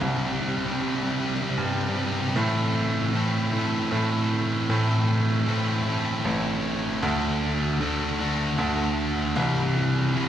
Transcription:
0.01 1.54 C2 loud
0.01 0.08 C3 medium
0.01 0.10 G3 medium
0.09 0.16 C3 soft
0.09 0.18 G3 medium
0.17 0.25 C3 medium
0.17 0.26 G3 medium
0.26 0.32 C3 medium
0.26 0.32 G3 medium
0.33 0.41 C3 medium
0.33 0.41 G3 medium
0.41 0.48 C3 medium
0.41 0.49 G3 medium
0.49 0.56 C3 medium
0.49 0.57 G3 medium
0.57 0.65 C3 medium
0.57 0.65 G3 medium
0.66 0.72 C3 medium
0.66 0.73 G3 medium
0.72 0.80 C3 medium
0.72 0.81 G3 medium
0.81 0.87 C3 medium
0.81 0.88 G3 medium
0.88 0.95 C3 medium
0.88 0.96 G3 medium
0.96 1.02 C3 medium
0.96 1.04 G3 medium
1.03 1.11 C3 medium
1.03 1.12 G3 medium
1.12 1.19 C3 medium
1.12 1.20 G3 medium
1.20 1.26 C3 medium
1.20 1.28 G3 medium
1.26 1.34 C3 medium
1.26 1.35 G3 medium
1.34 1.42 C3 medium
1.34 1.43 G3 medium
1.42 1.49 C3 medium
1.42 1.51 G3 medium
1.50 1.57 C3 medium
1.50 1.58 G3 medium
1.58 2.32 G2 loud
1.58 1.65 C3 medium
1.58 1.67 G3 medium
1.66 1.74 C3 medium
1.66 1.74 G3 medium
1.74 1.81 C3 medium
1.74 1.82 G3 medium
1.82 1.89 C3 medium
1.82 1.89 G3 medium
1.89 1.96 C3 medium
1.89 1.97 G3 medium
1.97 2.05 C3 medium
1.97 2.06 G3 medium
2.05 2.12 C3 medium
2.05 2.13 G3 medium
2.12 2.20 C3 medium
2.12 2.20 G3 medium
2.21 2.28 C3 medium
2.21 2.28 G3 medium
2.28 2.36 C3 medium
2.28 2.36 G3 medium
2.35 3.12 A2 medium
2.35 3.88 A2 loud
2.35 3.13 E3 loud
2.35 3.14 A3 medium
2.35 3.15 C4 loud
2.35 3.15 E4 loud
2.35 3.15 A4 loud
3.13 3.51 A2 medium
3.13 3.52 E3 medium
3.13 3.53 A3 medium
3.13 3.53 C4 medium
3.13 3.54 E4 medium
3.13 3.55 A4 medium
3.52 3.90 A2 medium
3.52 3.91 E3 medium
3.52 3.92 A3 medium
3.52 3.92 C4 loud
3.52 3.92 E4 medium
3.52 3.94 A4 loud
3.91 4.68 A2 loud
3.91 4.66 A2 loud
3.91 4.69 E3 medium
3.91 4.71 A3 loud
3.91 4.70 C4 loud
3.91 4.71 E4 loud
3.91 4.72 A4 loud
4.70 6.21 A2 loud
4.70 5.46 A2 loud
4.70 5.46 E3 medium
4.70 5.48 A3 medium
4.70 5.47 C4 loud
4.70 5.47 E4 loud
4.70 5.49 A4 loud
5.47 5.85 A2 medium
5.47 5.86 E3 medium
5.47 5.86 A3 medium
5.47 5.86 C4 medium
5.47 5.87 E4 loud
5.47 5.87 A4 medium
5.86 6.24 A2 medium
5.86 6.25 E3 medium
5.86 6.26 A3 medium
5.86 6.26 C4 loud
5.86 6.27 E4 loud
5.86 6.27 A4 loud
6.25 6.99 A1 loud
6.25 7.01 A2 medium
6.25 7.01 E3 loud
6.25 7.02 A3 loud
6.25 7.02 C4 loud
6.25 7.02 E4 loud
6.25 7.02 A4 loud
7.03 8.54 D2 loud
7.03 7.79 D3 loud
7.03 7.80 A3 loud
7.03 7.81 D4 loud
7.03 7.81 F#4 loud
7.03 7.82 A4 loud
7.80 8.18 D3 medium
7.80 8.19 A3 loud
7.80 8.20 D4 loud
7.80 8.20 F#4 loud
7.80 8.20 A4 medium
8.19 8.57 D3 medium
8.19 8.58 A3 medium
8.19 8.59 D4 loud
8.19 8.59 F#4 medium
8.19 8.59 A4 loud
8.58 9.32 D2 loud
8.58 9.34 D3 loud
8.58 9.34 A3 loud
8.58 9.35 D4 loud
8.58 9.35 F#4 loud
8.58 9.35 A4 loud
9.36 10.29 C2 loud
9.36 10.13 C3 loud
9.36 10.14 E3 loud
9.36 10.14 G3 loud
9.36 10.14 C4 loud
9.36 10.15 E4 loud
10.14 10.29 C3 medium
10.14 10.29 E3 medium
10.14 10.29 G3 medium
10.14 10.29 C4 medium
10.14 10.29 E4 loud

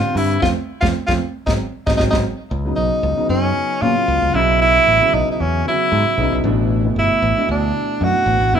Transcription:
0.00 0.35 D3 medium
0.00 0.35 G3 medium
0.00 0.36 C4 medium
0.00 0.36 D4 medium
0.00 0.19 F4 medium
0.15 0.37 G2 medium
0.15 0.42 E4 medium
0.15 open hi-hat medium
0.31 closed hi-hat soft
0.41 0.52 F2 medium
0.41 0.50 F3 medium
0.41 0.50 A3 medium
0.41 0.51 C4 medium
0.41 0.49 F4 medium
0.41 kick medium
0.41 snare medium
0.81 0.91 F2 medium
0.81 0.90 F3 medium
0.81 0.90 A3 medium
0.81 0.90 C4 medium
0.81 0.87 F4 medium
0.81 kick medium
0.81 snare medium
1.07 1.17 F2 medium
1.07 1.16 F3 medium
1.07 1.16 A3 medium
1.07 1.16 C4 medium
1.07 1.13 F4 medium
1.07 kick medium
1.07 snare medium
1.46 1.57 G#1 medium
1.46 1.55 F#3 medium
1.46 1.55 G#3 medium
1.46 1.55 C4 medium
1.46 1.53 D#4 medium
1.46 kick medium
1.46 snare medium
1.86 1.96 G#1 medium
1.86 1.95 F#3 medium
1.86 1.94 G#3 medium
1.86 1.95 C4 medium
1.86 1.93 D#4 medium
1.86 kick medium
1.86 snare medium
1.97 2.09 G#1 medium
1.97 2.09 F#3 medium
1.97 2.09 G#3 medium
1.97 2.09 C4 medium
1.97 2.05 D#4 medium
1.97 kick medium
1.97 snare medium
2.10 2.22 G#1 medium
2.10 2.21 F#3 medium
2.10 2.21 G#3 medium
2.10 2.21 C4 medium
2.10 2.17 D#4 medium
2.10 kick medium
2.10 snare medium
2.51 2.73 C#2 loud
2.65 3.12 C#3 medium
2.65 3.12 F#3 medium
2.65 3.12 B3 medium
2.65 3.13 D#4 medium
2.76 2.89 B1 medium
2.76 3.26 D#4 medium
3.03 3.15 C#2 medium
3.17 3.76 C#3 medium
3.17 3.76 F#3 medium
3.17 3.76 B3 medium
3.17 3.76 D#4 medium
3.17 muted fingered electric bass stroke soft
3.29 3.51 F#2 medium
3.29 3.84 C#4 medium
3.81 3.93 A#2 medium
3.81 4.33 C#3 medium
3.81 4.34 F#3 medium
3.81 4.34 B3 medium
3.81 4.35 C#4 medium
3.81 4.36 F4 loud
4.08 4.20 C#2 medium
4.22 4.33 C#2 medium
4.34 4.78 B1 medium
4.34 4.94 C#3 medium
4.34 4.94 F#3 medium
4.34 4.94 B3 medium
4.34 4.61 E4 medium
4.34 4.94 E4 medium
4.62 5.16 E4 loud
4.87 4.98 A1 medium
5.00 5.59 C#3 medium
5.00 5.59 F#3 medium
5.00 5.59 B3 medium
5.00 5.60 E4 medium
5.14 5.25 B1 medium
5.14 5.31 D#4 medium
5.32 5.42 D#4 medium
5.40 5.62 E2 medium
5.40 5.66 C#4 medium
5.64 6.13 C#3 medium
5.64 6.13 F#3 medium
5.64 6.13 B3 medium
5.64 6.41 E4 medium
5.64 6.13 F#4 medium
5.92 6.03 G#2 medium
6.18 6.29 B1 medium
6.18 6.44 C#3 medium
6.18 6.44 F#3 medium
6.18 6.45 B3 medium
6.18 6.45 D#4 medium
6.32 6.42 B1 medium
6.44 6.87 A1 medium
6.44 6.80 B2 medium
6.44 6.80 E3 medium
6.44 6.80 A3 medium
6.44 6.81 D4 loud
6.84 7.31 B2 medium
6.84 7.31 E3 medium
6.84 7.32 A3 medium
6.84 7.32 B3 medium
6.96 7.08 G1 medium
6.96 7.47 E4 medium
7.22 7.34 A1 medium
7.37 7.95 B2 medium
7.37 7.96 E3 medium
7.37 7.95 A3 medium
7.37 7.96 D4 medium
7.49 7.71 D2 medium
7.49 8.05 D4 medium
8.01 8.13 F#2 medium
8.01 8.54 B2 medium
8.01 8.54 E3 medium
8.01 8.54 A3 medium
8.01 8.54 D4 medium
8.01 8.56 F#4 medium
8.26 8.38 A1 medium
8.40 8.51 A1 medium
8.53 8.60 F#1 medium
8.53 8.60 C#3 medium
8.53 8.60 F#3 medium
8.53 8.60 B3 medium
8.53 8.60 D#4 medium
8.53 8.60 E4 medium

